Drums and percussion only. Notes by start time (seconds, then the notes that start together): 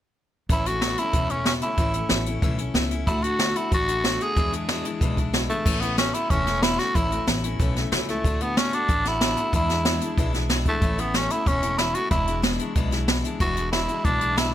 0.50 kick, closed hi-hat
0.66 closed hi-hat
0.82 snare, closed hi-hat
0.97 closed hi-hat
1.13 kick, closed hi-hat
1.29 closed hi-hat
1.45 snare, closed hi-hat
1.61 closed hi-hat
1.77 kick, closed hi-hat
1.93 closed hi-hat
2.09 snare, closed hi-hat
2.26 closed hi-hat
2.42 kick, closed hi-hat
2.58 closed hi-hat
2.75 snare, closed hi-hat
2.91 closed hi-hat
3.07 kick, closed hi-hat
3.24 closed hi-hat
3.39 snare, closed hi-hat
3.56 closed hi-hat
3.72 kick, closed hi-hat
3.88 closed hi-hat
4.04 snare, closed hi-hat
4.20 closed hi-hat
4.37 kick, closed hi-hat
4.53 closed hi-hat
4.69 snare, closed hi-hat
4.85 closed hi-hat
5.01 kick, closed hi-hat
5.17 kick, closed hi-hat
5.34 snare, closed hi-hat
5.50 closed hi-hat
5.66 kick, crash
5.82 closed hi-hat
5.98 snare, closed hi-hat
6.14 closed hi-hat
6.30 kick, closed hi-hat
6.47 snare, closed hi-hat
6.62 snare, closed hi-hat
6.79 snare, closed hi-hat
6.95 kick, closed hi-hat
7.12 closed hi-hat
7.27 snare, closed hi-hat
7.44 closed hi-hat
7.60 kick, closed hi-hat
7.76 snare, closed hi-hat
7.92 snare, closed hi-hat
8.08 snare, closed hi-hat
8.24 kick, closed hi-hat
8.40 closed hi-hat
8.57 snare, closed hi-hat
8.73 closed hi-hat
8.89 kick, closed hi-hat
9.05 snare, closed hi-hat
9.21 snare, closed hi-hat
9.37 closed hi-hat
9.53 kick, closed hi-hat
9.69 snare, closed hi-hat
9.85 snare, closed hi-hat
10.01 closed hi-hat
10.18 kick, closed hi-hat
10.34 snare, closed hi-hat
10.50 snare, closed hi-hat
10.65 kick, closed hi-hat
10.82 kick, closed hi-hat
10.98 closed hi-hat
11.14 snare, closed hi-hat
11.30 closed hi-hat
11.46 kick, closed hi-hat
11.63 closed hi-hat
11.78 snare, closed hi-hat
11.94 closed hi-hat
12.11 kick, closed hi-hat
12.27 closed hi-hat
12.43 snare, closed hi-hat
12.59 closed hi-hat
12.75 kick, closed hi-hat
12.92 snare, closed hi-hat
13.08 snare, closed hi-hat
13.25 closed hi-hat
13.40 kick, closed hi-hat
13.57 closed hi-hat
13.73 snare, closed hi-hat
13.88 closed hi-hat
14.04 kick, closed hi-hat
14.21 closed hi-hat
14.37 snare, closed hi-hat